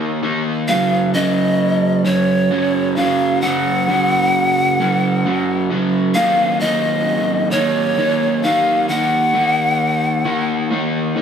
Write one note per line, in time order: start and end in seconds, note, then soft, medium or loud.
0.00 0.22 D#3 medium
0.00 0.23 A#3 medium
0.00 0.23 D#4 medium
0.23 0.66 D#3 medium
0.23 0.70 A#3 medium
0.23 0.73 D#4 medium
0.68 1.14 F#2 medium
0.68 1.14 C#3 loud
0.68 1.15 F#3 loud
0.68 1.11 F5 loud
1.14 2.04 F#2 medium
1.14 2.04 C#3 loud
1.14 2.05 F#3 loud
1.14 2.06 D#5 loud
2.05 2.50 F#2 loud
2.05 2.50 C#3 loud
2.05 2.52 F#3 loud
2.05 2.98 C#5 loud
2.51 2.97 F#2 loud
2.51 2.96 C#3 loud
2.51 2.98 F#3 loud
2.96 3.42 F#2 medium
2.96 3.42 C#3 loud
2.96 3.44 F#3 loud
2.96 3.41 F5 loud
3.41 3.88 F#2 loud
3.41 3.88 C#3 medium
3.41 3.90 F#3 loud
3.41 5.66 F#5 loud
3.89 4.79 F#2 medium
3.89 4.79 C#3 medium
3.89 4.80 F#3 loud
4.80 5.25 F#2 loud
4.80 5.25 C#3 loud
4.80 5.26 F#3 loud
5.25 5.70 F#2 medium
5.25 5.70 C#3 medium
5.25 5.71 F#3 loud
5.70 9.20 F#2 loud
5.70 6.13 C#3 loud
5.70 6.16 F#3 loud
6.14 6.61 D#3 loud
6.14 6.62 A#3 loud
6.14 6.63 D#4 loud
6.14 6.62 F5 loud
6.60 7.51 D#3 medium
6.60 7.53 A#3 loud
6.60 7.54 D#4 loud
6.60 7.53 D#5 loud
7.51 7.97 D#3 loud
7.51 7.99 A#3 loud
7.51 7.99 D#4 loud
7.51 8.42 C#5 loud
7.98 8.43 D#3 medium
7.98 8.44 A#3 loud
7.98 8.45 D#4 loud
8.43 8.88 D#3 medium
8.43 8.89 A#3 medium
8.43 8.90 D#4 loud
8.43 8.90 F5 loud
8.89 9.33 D#3 medium
8.89 9.34 A#3 loud
8.89 9.35 D#4 loud
8.89 11.16 F#5 loud
9.34 10.24 D#3 medium
9.34 10.26 A#3 medium
9.34 10.27 D#4 loud
10.26 10.70 D#3 loud
10.26 10.71 A#3 loud
10.26 10.71 D#4 loud
10.71 11.15 D#3 medium
10.71 11.16 A#3 loud
10.71 11.17 D#4 loud
11.16 11.22 D#3 medium
11.16 11.22 A#3 medium
11.16 11.22 D#4 loud